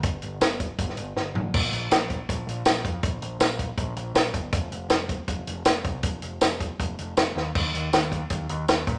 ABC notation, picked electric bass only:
X:1
M:4/4
L:1/8
Q:1/4=160
K:Bb
V:1 name="Picked electric bass" clef=bass
G,,, G,,, G,,,2 G,,, G,,, G,,, G,,, | B,,, B,,, B,,,2 B,,, B,,, B,,, F,, | B,,, B,,, B,,,2 B,,, B,,, B,,, G,,, | F,,, F,,, F,,,2 F,,, F,,, F,,, C,, |
F,,, F,,, F,,,2 F,,, F,,, F,,, E,, | E,, E,, E,,2 E,, E,, E,, B,, |]